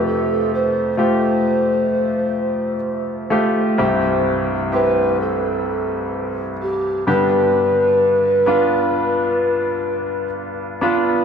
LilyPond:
<<
  \new Staff \with { instrumentName = "Pan flute" } { \time 4/4 \key c \major \tempo 4 = 64 a'8 c''2. r8 | r4 b'8 a'4 r8 g'8 b'8~ | b'2. r4 | }
  \new Staff \with { instrumentName = "Grand piano" } { \time 4/4 \key c \major <a f' g'>4 <a f' g'>2 r8 <a f' g'>8 | <c' e' g'>4 <c' e' g'>2 r8 <b d' g'>8~ | <b d' g'>4 <b d' f'>2 r8 <b d' f'>8 | }
  \new Staff \with { instrumentName = "Grand piano" } { \clef bass \time 4/4 \key c \major <f, c>2.~ <f, c>8 r8 | <c, g,>2.~ <c, g,>8 <g, d>8~ | <g, d>2.~ <g, d>8 r8 | }
>>